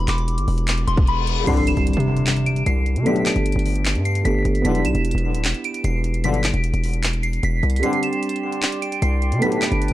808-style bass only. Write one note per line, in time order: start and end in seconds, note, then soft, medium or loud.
0.08 0.39 E1 loud
0.38 0.47 G1 medium
0.48 0.86 E1 loud
0.88 1.45 E1 loud
1.47 1.76 C2 loud
1.77 1.96 C2 loud
1.97 2.64 C3 loud
2.66 2.98 C2 loud
2.96 3.06 C3 loud
3.36 3.55 G1 loud
3.56 3.97 G1 loud
3.95 4.24 G2 loud
4.25 4.44 G1 loud
4.45 4.64 G1 loud
4.65 4.86 E1 loud
4.85 4.94 B1 loud
4.95 5.14 E1 loud
5.15 5.36 E1 loud
5.35 5.46 D1 loud
5.44 5.54 E1 loud
5.84 6.25 E1 loud
6.24 6.52 G1 loud
6.54 6.73 E1 loud
6.74 7.40 E1 loud
7.43 7.62 E1 loud
7.63 7.83 C2 loud
9.02 9.33 C2 loud
9.32 9.41 C3 loud
9.72 9.91 G1 loud